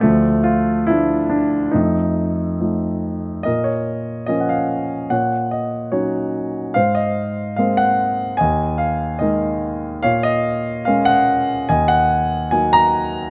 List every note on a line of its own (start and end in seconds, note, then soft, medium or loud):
0.01 1.70 D2 medium
0.01 0.88 F3 medium
0.01 0.46 A3 medium
0.43 0.89 F4 medium
0.87 1.72 F3 soft
0.87 1.72 A3 soft
0.87 1.28 D4 soft
0.87 1.32 E4 medium
1.30 1.70 D4 medium
1.72 3.42 F2 medium
1.72 2.59 A3 soft
1.72 2.55 D#4 medium
2.60 3.43 F3 soft
2.60 3.43 A3 soft
2.60 3.43 D#4 soft
3.43 5.07 A#2 soft
3.43 5.07 A#4 soft
3.43 3.66 D#5 medium
3.64 4.29 C#5 medium
4.26 4.94 F3 soft
4.26 4.95 A#3 soft
4.26 4.95 C#4 soft
4.26 4.42 D#5 medium
4.40 4.48 F#5 soft
4.49 5.12 F5 medium
5.10 6.71 A#2 medium
5.10 5.90 C#5 soft
5.10 5.53 F#5 medium
5.51 5.94 D#5 medium
5.92 6.58 F#3 soft
5.92 6.59 C#4 soft
5.92 6.59 D#4 soft
5.92 6.50 C#5 medium
6.74 8.35 G#2 soft
6.74 8.35 C5 soft
6.74 6.96 F5 medium
6.95 7.53 D#5 medium
7.56 8.23 G#3 soft
7.56 8.23 A#3 soft
7.56 8.24 C4 soft
7.56 7.76 F5 medium
7.77 8.35 F#5 medium
8.37 10.00 D#2 medium
8.37 9.17 D#5 soft
8.37 8.76 G#5 medium
8.78 9.17 F5 medium
9.19 9.87 G#3 soft
9.19 9.88 A#3 soft
9.19 9.88 D#4 soft
9.19 9.78 D#5 medium
10.03 11.65 A#2 medium
10.03 11.64 C#5 medium
10.03 10.25 F5 medium
10.23 10.88 D#5 medium
10.85 11.52 G#3 soft
10.85 11.53 A#3 soft
10.85 11.53 C#4 soft
10.85 11.07 F5 medium
11.05 11.69 F#5 medium
11.69 13.30 D#2 medium
11.69 13.30 D#5 medium
11.69 11.90 G#5 medium
11.88 12.53 F#5 medium
12.51 13.19 F#3 soft
12.51 13.19 A#3 soft
12.51 13.19 D#4 soft
12.51 12.73 G#5 medium
12.73 13.30 A#5 loud